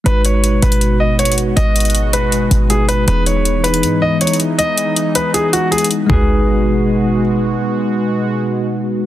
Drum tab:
HH |x-----------x-----------x-----------x-----x-----x-----------------------x---x---x---x-----------|x-----------x--x--x--x--x-----------x-----------x-----------x-----------x-----------x-----------|x-----------x-----------x-----------x-----x-----x-----------------------x---x---x---x-----------|x-----------x-----------x-----------x-----------x-----------x-----------x---x---x---x-----------|
FT |------------------------------------------------------------------------------------------------|------------------------------------------------------------------------------------------------|------------------------------------------------------------------------------------------------|------------------------------------------------------------------------------------------------|
BD |------------------------------------------------------------------------------------------------|------------------------------------------------------------------------------------------------|------------------------------------------------------------------------------------------------|------------------------------------------------------------------------------------------------|

HH |------------------------------------------------------------------------------------------------|------------------------------------------------------------------------------------------------|
FT |o-----------------------------------------------------------------------------------------------|------------------------------------------------------------------------------------------------|
BD |o-----------------------------------------------------------------------------------------------|------------------------------------------------------------------------------------------------|